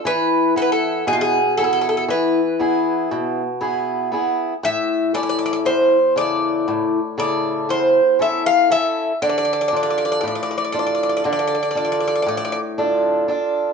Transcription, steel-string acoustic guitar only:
\new Staff \with { instrumentName = "Steel-string acoustic guitar" } { \time 9/8 \tempo 4. = 39 e8 <b e' b'>8 b,8 <b e' gis'>8 e8 <b e' gis'>8 b,8 <b e' gis'>8 <b e' gis'>8 | a,8 <cis' e' a'>8 e,8 <cis e' a'>8 a,8 <cis e' a'>8 e,8 <cis' e' a'>8 <cis' e' a'>8 | d8 <d' f' a'>8 a,8 <d' f' a'>8 d8 <d' f' a'>8 a,8 <d' f' a'>8 <d' f' a'>8 | }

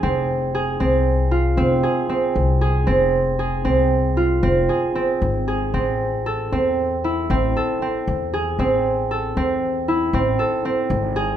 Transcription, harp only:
\new Staff \with { instrumentName = "Harp" } { \time 11/8 \key a \minor \tempo 4 = 116 c'4 aes'8 c'4 f'8 c'8 aes'8 c'4 aes'8 | c'4 aes'8 c'4 f'8 c'8 aes'8 c'4 aes'8 | c'4 a'8 c'4 e'8 c'8 a'8 c'4 gis'8 | c'4 a'8 c'4 e'8 c'8 a'8 c'4 gis'8 | }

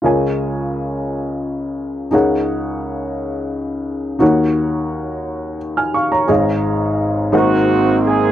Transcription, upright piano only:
\new Staff \with { instrumentName = "Upright piano" } { \time 6/8 \key des \major \tempo 4. = 58 << { r2. | r2. | r2 r16 <aes'' f'''>16 <f'' des'''>16 <des'' bes''>16~ | <des'' bes''>16 r2 r8. | } \\ { <des, des f' aes' bes' des'' aes''>2. | <des, des ees' aes' bes' des'' ges''>2. | <ees, ees ees' ges' bes' des'' ges''>2. | <aes,, aes, aes' des'' f''>4. <aes,, aes, ees' aes' bes' c'' ges''>4. | } >> }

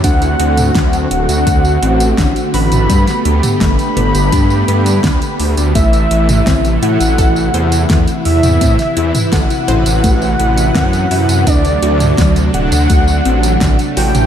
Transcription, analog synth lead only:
\new Staff \with { instrumentName = "Analog synth lead" } { \time 4/4 \key a \dorian \tempo 4 = 84 fis''4. fis''2 b''8~ | b''4 b''2. | e''4. fis''2 e''8~ | e''4 fis''2. |
d''4. fis''2 g''8 | }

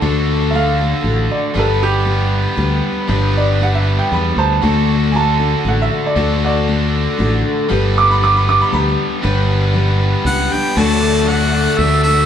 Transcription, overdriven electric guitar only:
\new Staff \with { instrumentName = "Overdriven electric guitar" } { \time 3/4 \key d \major \tempo 4 = 117 <d d' fis' a'>2. | <g b d' b'>2. | <g b d' b'>2. | <d d' fis' a'>2. |
<d d' fis' a'>2. | <g b d' b'>2. | <g b d' b'>2. | <d fis a d' fis'>8 <a d' fis'>8 <fis a d' fis'>8 <a d' fis'>4 <a d' fis'>8 | }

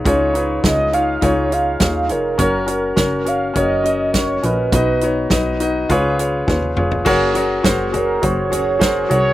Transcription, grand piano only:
<<
  \new Staff \with { instrumentName = "Grand piano" } { \time 4/4 \key des \mixolydian \tempo 4 = 103 <ees' f' aes' des''>8 <ees' f' aes' ces''>8 <ees' f' aes' des''>8 <ees' f' aes' des''>8 <ees' f' aes' des''>8 <ees' f' aes' des''>8 <ees' f' aes' des''>8 <ees' f' aes' des''>8 | <des' ges' bes' des''>8 <des' ges' bes' des''>8 <des' ges' bes' des''>8 <des' ges' bes' des''>8 <des' ges' bes' des''>8 <des' ges' bes' ees''>8 <des' ges' bes' des''>8 <des' ges' bes' ees''>8 | <ees' ges' ces'' ees''>8 <ees' ges' ces'' des''>8 <ees' ges' ces'' ees''>8 <ees' ges' ces'' ees''>8 <f' aes' ces'' des''>8 <f' aes' ces'' des''>8 <f' aes' ces'' des''>8 <f' aes' ces'' des''>8 | \key ges \lydian <ges' aes' bes' des''>8 <ges' aes' bes' des''>8 <ges' aes' bes' c''>8 <ges' aes' bes' des''>8 <ges' aes' bes' c''>8 <ges' aes' bes' des''>8 <ges' aes' bes' c''>8 <ges' aes' bes' des''>8 | }
  \new Staff \with { instrumentName = "Grand piano" } { \clef bass \time 4/4 \key des \mixolydian des4. r2 r8 | r1 | ces4. r8 des4. r8 | \key ges \lydian r1 | }
>>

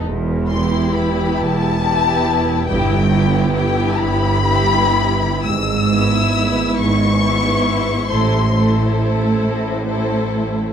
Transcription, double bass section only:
\new Staff \with { instrumentName = "Double bass section" } { \clef bass \time 6/8 \key e \minor \tempo 4. = 45 e,,4. e,,4. | g,,4. g,,4. | \key e \major gis,,4. gis,,4. | a,,4. a,,4. | }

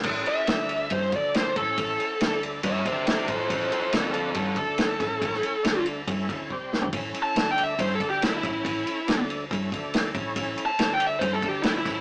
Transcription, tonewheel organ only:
\new Staff \with { instrumentName = "Tonewheel organ" } { \time 4/4 \key a \mixolydian \tempo 4 = 140 <a cis' e' a'>4 <a d' a' d''>4 <cis' e' a' cis''>8 <a d' a' d''>4 <cis' e' a' cis''>8~ | <cis' e' a' cis''>4 <a d' a' d''>4 <cis' e' a' cis''>8 <a d' a' d''>4 <cis' e' a' cis''>8~ | <cis' e' a' cis''>4 <a d' a' d''>4 <cis' e' a' cis''>8 <a d' a' d''>4 <cis' e' a' cis''>8~ | <cis' e' a' cis''>4 <a d' a' d''>4 <cis' e' a' cis''>8 <cis' e' a' cis''>8 <g c' g' c''>4 |
<cis' e' a' cis''>4 <a d' a' d''>4 <cis' e' a' cis''>8 <a d' a' d''>4 <cis' e' a' cis''>8~ | <cis' e' a' cis''>4 <a d' a' d''>4 <cis' e' a' cis''>8 <a d' a' d''>4 <cis' e' a' cis''>8~ | <cis' e' a' cis''>4 <a d' a' d''>4 <cis' e' a' cis''>8 <a d' a' d''>4 <cis' e' a' cis''>8 | }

